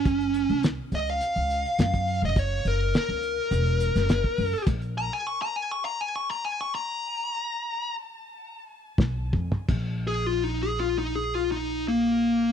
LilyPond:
<<
  \new Staff \with { instrumentName = "Lead electric guitar" } { \time 4/4 \key bes \minor \tempo 4 = 102 des'4 r8 ees''16 f''2 ees''16 | des''8 bes'8 bes'2. | r8 bes''16 aes''16 des'''16 bes''16 aes''16 des'''16 bes''16 aes''16 des'''16 bes''16 aes''16 des'''16 bes''8~ | bes''4. r2 r8 |
r8 aes'16 f'16 ees'16 aes'16 f'16 ees'16 aes'16 f'16 ees'8 bes4 | }
  \new Staff \with { instrumentName = "Upright bass" } { \clef bass \time 4/4 \key bes \minor ges,,8. c,8 r16 des,8 r16 des,8 r16 ges,8. ges,,16~ | ges,,8 ges,,8 r16 des,8 r16 fes,,8. ges,,8 r16 ges,,16 r16 | bes,,8. r2. r16 | r2. ces,8 f,16 r16 |
bes,,1 | }
  \new DrumStaff \with { instrumentName = "Drums" } \drummode { \time 4/4 <hh bd>16 hh16 hh16 hh16 <hh sn>8 hh16 hh16 hh16 hh16 hh16 hh16 <hh sn>16 <hh bd>16 hho8 | <hh bd>8 hh8 <hh sn>8 hh8 hh16 hh16 hh16 <hh sn>16 <hh sn>16 bd16 hho8 | <cymc hh bd>16 hh8. r4 r4 r4 | r4 r4 r4 <bd sn tommh>8 bd16 tomfh16 |
<cymc bd>4 r4 r4 r4 | }
>>